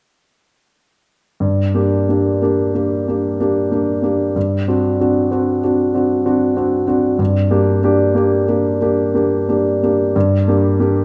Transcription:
1.40 1.73 G2 soft
1.74 2.05 A#3 soft
1.74 2.05 D4 soft
1.74 2.05 G4 soft
2.09 2.39 A#3 soft
2.09 2.39 D4 soft
2.09 2.39 G4 soft
2.42 2.72 A#3 soft
2.42 2.72 D4 soft
2.42 2.72 G4 soft
2.74 3.04 A#3 soft
2.74 3.04 D4 soft
2.74 3.05 G4 soft
3.08 3.37 A#3 soft
3.08 3.37 D4 soft
3.08 3.37 G4 soft
3.40 3.69 A#3 soft
3.40 3.69 D4 soft
3.40 3.69 G4 soft
3.71 4.00 A#3 soft
3.71 4.01 D4 soft
3.71 4.01 G4 soft
4.02 4.32 A#3 soft
4.02 4.32 D4 soft
4.02 4.33 G4 soft
4.36 4.67 G2 soft
4.68 4.96 C4 soft
4.68 4.97 D4 soft
4.68 4.97 F#4 soft
5.00 5.29 C4 soft
5.00 5.29 D4 soft
5.00 5.29 F#4 soft
5.31 5.60 C4 soft
5.31 5.60 D4 soft
5.31 5.60 F#4 soft
5.64 5.92 C4 soft
5.64 5.92 D4 soft
5.64 5.92 F#4 soft
5.94 6.22 C4 soft
5.94 6.23 D4 soft
5.94 6.23 F#4 soft
6.25 6.53 C4 soft
6.25 6.54 D4 soft
6.25 6.54 F#4 soft
6.56 6.84 C4 soft
6.56 6.85 D4 soft
6.56 6.85 F#4 soft
6.87 7.16 C4 soft
6.87 7.16 D4 soft
6.87 7.17 F#4 soft
7.19 7.50 G2 soft
7.51 7.80 A#3 soft
7.51 7.80 D4 soft
7.51 7.80 G4 soft
7.83 8.12 A#3 soft
7.83 8.13 D4 soft
7.83 8.13 G4 soft
8.15 8.44 A#3 soft
8.15 8.45 D4 soft
8.15 8.45 G4 soft
8.48 8.78 A#3 soft
8.48 8.78 D4 soft
8.48 8.78 G4 soft
8.81 9.12 A#3 soft
8.81 9.12 D4 soft
8.81 9.12 G4 soft
9.14 9.45 A#3 soft
9.14 9.45 D4 soft
9.14 9.45 G4 soft
9.49 9.79 A#3 soft
9.49 9.79 D4 soft
9.49 9.79 G4 soft
9.83 10.12 A#3 soft
9.83 10.12 D4 soft
9.83 10.13 G4 soft
10.16 10.47 G2 soft
10.48 10.77 A#3 soft
10.48 10.77 D4 soft
10.48 10.78 G4 soft
10.79 11.05 A#3 soft
10.79 11.05 D4 soft
10.79 11.05 G4 soft

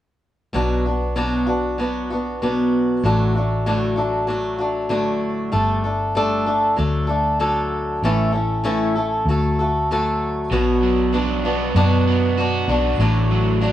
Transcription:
0.53 3.00 B1 medium
0.53 0.85 B2 medium
0.53 0.85 F#3 medium
0.53 0.85 B3 medium
0.53 0.86 D4 medium
0.53 0.84 F#4 medium
0.86 1.16 B3 soft
0.86 1.16 D4 soft
0.86 1.16 F#4 soft
1.16 1.47 B2 medium
1.16 1.47 F#3 medium
1.16 1.48 B3 medium
1.16 1.47 D4 medium
1.16 1.45 F#4 medium
1.46 1.78 B3 soft
1.46 1.79 D4 soft
1.46 1.78 F#4 soft
1.78 2.10 F#3 medium
1.78 2.10 B3 medium
1.78 2.11 D4 medium
1.78 2.09 F#4 medium
2.10 2.42 B3 soft
2.10 2.42 D4 soft
2.10 2.42 F#4 soft
2.42 3.04 B2 medium
2.42 3.03 F#3 medium
2.42 3.05 B3 medium
2.42 3.05 D4 medium
2.42 3.05 F#4 medium
3.03 5.49 A1 medium
3.03 3.35 A2 medium
3.03 3.35 D3 medium
3.03 3.35 F#3 medium
3.03 3.36 A3 medium
3.03 3.36 D4 medium
3.03 3.34 F#4 medium
3.35 3.65 F#3 soft
3.35 3.66 A3 soft
3.35 3.66 D4 soft
3.35 3.66 F#4 soft
3.66 3.98 A2 medium
3.66 3.98 D3 medium
3.66 3.97 F#3 medium
3.66 3.97 A3 medium
3.66 3.96 D4 medium
3.66 3.95 F#4 medium
3.96 4.26 F#3 soft
3.96 4.27 A3 soft
3.96 4.27 D4 medium
3.96 4.28 F#4 soft
4.27 4.59 F#3 medium
4.27 4.60 A3 medium
4.27 4.59 D4 medium
4.27 4.57 F#4 medium
4.58 4.89 F#3 soft
4.58 4.89 A3 soft
4.58 4.89 D4 soft
4.58 4.90 F#4 soft
4.89 5.53 A2 medium
4.89 5.53 D3 medium
4.89 5.51 F#3 medium
4.89 5.52 A3 medium
4.89 5.51 D4 medium
4.89 5.53 F#4 medium
5.52 6.76 G1 medium
5.52 5.84 G3 medium
5.52 5.84 A3 medium
5.52 5.84 D4 medium
5.52 5.83 A4 medium
5.84 6.15 A3 soft
5.84 6.15 D4 soft
5.84 6.15 A4 soft
6.15 6.47 G3 medium
6.15 6.47 A3 medium
6.15 6.46 D4 medium
6.15 6.45 A4 medium
6.46 6.76 A3 soft
6.46 6.77 D4 soft
6.46 6.78 A4 soft
6.76 8.01 D2 medium
6.76 7.09 F#3 medium
6.76 7.09 A3 medium
6.76 7.08 D4 medium
6.76 7.06 A4 medium
7.07 7.39 A3 soft
7.07 7.39 D4 medium
7.07 7.39 A4 medium
7.40 8.02 D3 medium
7.40 8.03 F#3 medium
7.40 8.03 A3 medium
7.40 8.03 D4 medium
7.40 8.03 A4 medium
8.02 9.25 A1 medium
8.02 8.35 A2 medium
8.02 8.34 E3 medium
8.02 8.34 A3 medium
8.02 8.33 C#4 medium
8.02 8.32 E4 medium
8.02 8.31 A4 medium
8.32 8.63 A3 soft
8.32 8.64 C#4 soft
8.32 8.65 E4 soft
8.32 8.64 A4 soft
8.64 8.96 A2 medium
8.64 8.96 E3 medium
8.64 8.96 A3 medium
8.64 8.96 C#4 medium
8.64 8.95 E4 medium
8.64 8.94 A4 medium
8.95 9.28 A3 soft
8.95 9.28 C#4 soft
8.95 9.28 E4 soft
8.95 9.27 A4 medium
9.25 10.48 D2 medium
9.25 9.59 F#3 medium
9.25 9.59 A3 medium
9.30 9.59 F#4 medium
9.30 9.58 A4 medium
9.59 9.91 A3 soft
9.59 9.91 F#4 soft
9.59 9.90 A4 medium
9.91 10.51 D3 medium
9.91 10.51 F#3 medium
9.91 10.52 A3 medium
9.91 10.52 F#4 medium
9.91 10.52 A4 medium
10.51 11.72 B1 medium
10.51 11.14 B2 medium
10.51 11.12 F#3 medium
10.51 11.13 B3 medium
10.51 11.14 D4 medium
10.51 11.15 F#4 medium
10.83 12.38 F#3 medium
11.13 11.44 F#3 medium
11.13 11.45 B3 medium
11.13 11.44 D4 medium
11.13 11.43 F#4 medium
11.44 11.75 B3 soft
11.44 11.76 D4 soft
11.44 11.76 F#4 soft
11.75 12.64 F#2 medium
11.75 12.38 B2 medium
11.75 12.36 F#3 medium
11.75 12.37 B3 medium
11.75 12.39 D4 medium
11.75 12.39 F#4 medium
12.07 13.00 B3 medium
12.38 12.69 F#3 medium
12.38 12.69 B3 medium
12.38 12.69 D4 medium
12.38 12.68 F#4 medium
12.68 12.96 B1 medium
12.68 13.00 B3 soft
12.68 13.01 D4 soft
12.68 13.00 F#4 medium
12.98 13.72 A1 medium
12.98 13.62 A2 medium
12.98 13.62 D3 medium
12.98 13.60 F#3 medium
12.98 13.61 A3 medium
12.98 13.62 D4 medium
13.02 13.62 F#4 medium
13.31 13.72 F#3 medium
13.61 13.72 F#3 medium
13.61 13.72 A3 medium
13.61 13.72 D4 medium
13.61 13.72 F#4 medium

